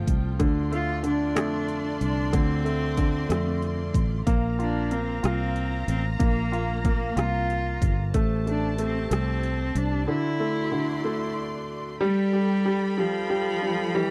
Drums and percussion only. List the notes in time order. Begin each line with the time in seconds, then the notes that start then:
0.07 kick, closed hi-hat
0.40 kick, closed hi-hat
0.73 closed hi-hat
1.04 closed hi-hat
1.36 cross-stick, closed hi-hat
1.69 closed hi-hat
2.01 closed hi-hat
2.33 kick, closed hi-hat
2.66 closed hi-hat
2.98 kick, closed hi-hat
3.30 cross-stick, closed hi-hat
3.62 cross-stick, closed hi-hat
3.94 kick, closed hi-hat
4.27 kick, closed hi-hat
4.60 closed hi-hat
4.91 closed hi-hat
5.24 cross-stick, closed hi-hat
5.56 closed hi-hat
5.88 closed hi-hat
6.20 kick, closed hi-hat
6.53 closed hi-hat
6.85 kick, closed hi-hat
7.17 cross-stick, closed hi-hat
7.50 cross-stick, closed hi-hat
7.82 kick, closed hi-hat
8.14 kick, closed hi-hat
8.47 closed hi-hat
8.78 closed hi-hat
9.11 cross-stick, closed hi-hat
9.43 closed hi-hat
9.76 closed hi-hat